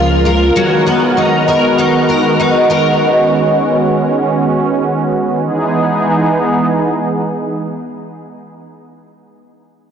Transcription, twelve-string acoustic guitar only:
Already playing: G#3 C#4 F4 A#4
0.25 A#4
0.56 F#3
0.86 B3
1.17 D#4
1.48 A#4
1.78 D#4
2.09 A#4
2.40 D#4
2.70 A#4

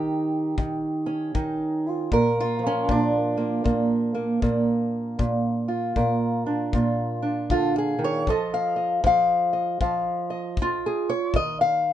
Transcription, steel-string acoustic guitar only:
Already playing: D#3 D#4 G4
0.58 D#3
1.06 C#4
1.35 D#3 D#4
1.89 F4
2.12 A#2 A#4
2.40 F4
2.59 F3
2.67 C#4
2.89 A#2 D4
3.37 A#3
3.64 A#2 A#3
4.15 A#3
4.42 A#2 A#3
5.19 A#2
5.68 F4
5.96 A#2 A#4
6.46 D4
6.74 A#2 F4
7.22 D4
7.51 D3 F4
7.78 G#4
7.99 D#3
8.04 C#5
8.28 F3 A4 D#5
8.54 F5
8.76 D#5
9.04 F3 F5
9.53 D#5
9.81 F3 F5
10.30 D#5
10.62 F4
10.86 G#4
11.09 C#5
11.34 D#3 D#5
11.61 F5

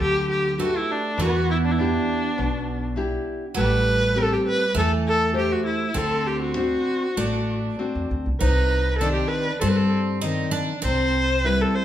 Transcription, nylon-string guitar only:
Already playing: D3
0.58 F#4 G4 B4
1.18 E3
1.79 D4 E4 G4
2.38 B2
2.96 D4 E4 G4
3.57 A3
4.16 C4 G4 A4
4.76 E3
5.33 G4 A4 C5
5.94 D3
6.56 C4 D4 F#4
7.17 A3
7.79 C4 D4 F#4
8.41 C3
9.01 D#3 C4 D4
9.62 G3
10.23 D#3 C4 D5
10.85 C3
11.44 G3 C4 E4

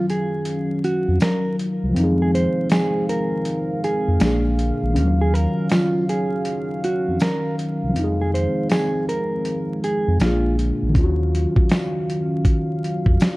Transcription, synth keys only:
Already playing: D#3 F#3 C#4 F5
1.89 F3
1.94 C4
1.99 D#4
2.03 G#4
4.18 A#2 A#3
4.23 D4 G#4
4.89 D#3
4.94 C#4
4.99 F5
5.04 F#3
7.89 F3
7.94 C4
7.99 D#4
8.04 G#4
10.18 A#2 A#3
10.23 D4 G#4
10.89 D#3
10.94 C#4
10.98 F4
11.03 F#4

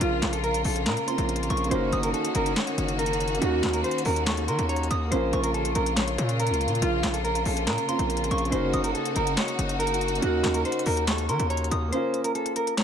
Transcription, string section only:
Already playing: C#3 A#3 F4
1.71 D#3 C#4 F#4
3.42 D#3
5.12 C#3 A#3 F4
8.52 D#4 F#4

